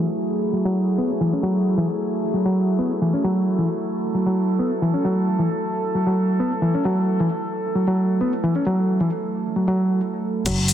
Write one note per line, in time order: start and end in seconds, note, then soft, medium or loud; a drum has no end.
0.00 10.42 F#3 medium
0.00 10.42 A3 medium
0.00 10.42 E4 medium
0.00 3.20 G#4 medium
0.53 0.64 F#3 medium
0.65 0.97 F#3 medium
0.98 1.10 B3 medium
1.21 1.32 E3 medium
1.33 1.42 C#4 medium
1.43 1.77 F#3 medium
1.78 1.87 E3 medium
2.34 2.44 F#3 medium
2.46 2.78 F#3 medium
2.79 2.90 B3 medium
3.02 3.12 E3 medium
3.14 3.22 C#4 medium
3.23 3.58 F#3 medium
3.23 10.42 A4 medium
3.59 3.67 E3 medium
4.14 4.25 F#3 medium
4.26 4.58 F#3 medium
4.59 4.71 B3 medium
4.82 4.93 E3 medium
4.94 5.03 C#4 medium
5.05 5.38 F#3 medium
5.39 5.48 E3 medium
5.95 6.06 F#3 medium
6.07 6.39 F#3 medium
6.40 6.51 B3 medium
6.62 6.73 E3 medium
6.74 6.83 C#4 medium
6.85 7.18 F#3 medium
7.20 7.29 E3 medium
7.76 7.86 F#3 medium
7.87 8.19 F#3 medium
8.21 8.32 B3 medium
8.43 8.54 E3 medium
8.56 8.64 C#4 medium
8.66 8.99 F#3 medium
9.01 9.09 E3 medium
9.56 9.67 F#3 medium
9.68 10.00 F#3 medium
10.46 10.73 F#1 loud
10.46 10.73 F#3 loud
10.46 kick loud
10.46 closed hi-hat medium
10.46 crash medium
10.46 shaker soft
10.68 closed hi-hat medium
10.68 shaker medium